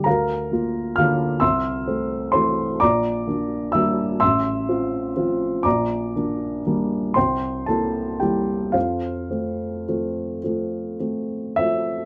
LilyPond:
<<
  \new Staff \with { instrumentName = "Upright piano" } { \time 6/8 \key f \major \tempo 4. = 41 <bes' f'' bes''>4 <f'' f'''>8 <e'' c''' e'''>4 <c'' c'''>8 | <d'' bes'' d'''>4 <e'' e'''>8 <e'' c''' e'''>4. | <d'' bes'' d'''>4. <c'' g'' c'''>8 <a' a''>8 <g' g''>8 | <f' c'' f''>4. r4 e''8 | }
  \new Staff \with { instrumentName = "Upright piano" } { \time 6/8 \key f \major d,8 <bes f'>8 <d bes f'>8 c,8 <a c'>8 <e a c'>8 | bes,,8 <bes d'>8 <g bes d'>8 a,,8 <c' f'>8 <f c' f'>8 | bes,,8 <bes d'>8 <g bes d'>8 c,8 <bes e'>8 <g bes e'>8 | f,8 <a c'>8 <f a c'>8 <f a c'>8 <a c'>8 <f a c'>8 | }
>>